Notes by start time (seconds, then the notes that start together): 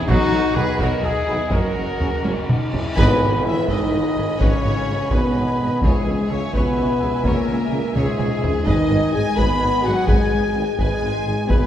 0.04 B1 F#3 D#4 F#4, taiko
0.08 B1 B2 D#4 F#4
0.31 B1 B2 F#3 D#4
0.55 B1 B2 D#3 F#3 B3 D#4 G#4 B4, taiko low
0.78 B1 B2 F#3 D#4 F#4 A#4 D#5, taiko
1.02 E4 G#4, taiko low
1.27 B1 B2 D#3 F#3 B3 D#4
1.51 F#1 F#2 F#3 C#4 F#4 A#4, taiko
1.75 F#1 F#2 F#3 C#4
2.00 F#1 F#2 C#3 F#3 C#4, taiko low
2.24 F#1 F#2 F#3 C#4, taiko high
2.48 D#4, taiko mid
2.72 F#1 F#2 C#3 F#3 C#4 E4, taiko low
2.95 G#1 G#2 B2 B3 B4 D#5 G#5 B5, taiko, tam-tam
3.21 G#1 G#2 B4
3.45 G#1 G#2 E3 E4 G#4 E5
3.68 G#1 G#2 D#3 D#4 B4 D#5, taiko
3.93 G#1 G#2 B4
4.16 G#1 G#2 G#4
4.39 G#1 G#2 C#3 C#4 B4 C#5, taiko
4.64 G#1 G#2 B4
4.87 G#1 G#2 G#4
5.10 G#1 G#2 B2 B3 B4, taiko
5.36 G#1 G#2 B4
5.60 G#1 G#2 G#4
5.82 C#2 G#2 C#3 G#3 G#4 C#5 E5 G#5, taiko
6.07 C#2 C#3 C#5
6.30 C#2 C#3 C#4 G#4 C#5
6.53 C#2 B2 C#3 B3 B4 C#5, taiko
6.77 C#2 C#3 C#5
7.01 C#2 C#3 G#4
7.23 C#2 A#2 C#3 A#3 A#4 C#5, taiko
7.48 C#2 C#3 C#5
7.71 C#2 C#3 G#4
7.94 C#2 G#2 C#3 G#3 G#4 C#5, taiko mid
8.19 C#2 C#3 C#5, taiko mid
8.42 C#2 C#3 G#4, taiko low
8.65 G#1 G#2 D#3 D#4 B4 D#5 G#5, taiko
8.89 G#1 G#2 B4
9.13 G#1 G#2 G#3 G#4 G#5
9.37 G#1 G#2 B3 B4 B5, taiko
9.60 G#1 G#2 B4
9.82 G#1 G#2 F#4 G#4 F#5
9.87 F#3
10.07 G#1 G#2 G#3 G#4 B4 G#5, taiko
10.31 G#1 G#2 B4
10.55 G#1 G#2 G#4
10.78 G#1 G#2 G#3 G#4 B4 G#5, taiko
11.02 G#1 G#2 B4
11.25 G#1 G#2 G#4
11.48 G#1 B2 B3 E4 B4 G#5, taiko
11.52 G#2